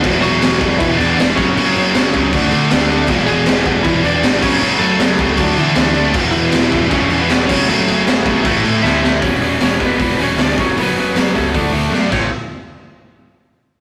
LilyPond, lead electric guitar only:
\new Staff \with { instrumentName = "Lead electric guitar" } { \time 4/4 \key e \mixolydian \tempo 4 = 157 r8 <fis fis'>4. <e e'>8 <d' d''>4 <cis' cis''>8~ | <cis' cis''>2~ <cis' cis''>8 r4. | r8 <gis gis'>4. <e e'>8 <d' d''>4 <cis' cis''>8 | r8 <a a'>4. <fis fis'>8 <e e'>4 <d' d''>8 |
r8 <e e'>4. <cis' cis''>8. <b b'>8. <cis' cis''>8 | <a a'>2 <a a'>4 <e' e''>4 | <cis' cis''>4 <cis' cis''>8 <b b'>4 <cis' cis''>8 <d' d''>8 <cis' cis''>8 | <b b'>8 <b b'>4 <a a'>2 cis''8 |
r1 | }